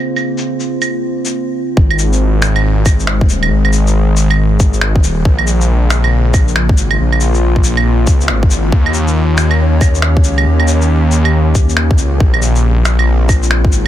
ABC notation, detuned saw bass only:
X:1
M:4/4
L:1/8
Q:"Swing 16ths" 1/4=138
K:Bbdor
V:1 name="Detuned saw bass" clef=bass
z8 | A,,,6- A,,, E,,, | A,,,4- A,,, A,,,2 E,,, | B,,,6- B,,, A,,, |
B,,,4- B,,, D,, A,,,2 | E,,6- E,, D,, | E,,4- E,, E,,2 D,, | B,,,6- B,,, A,,, |]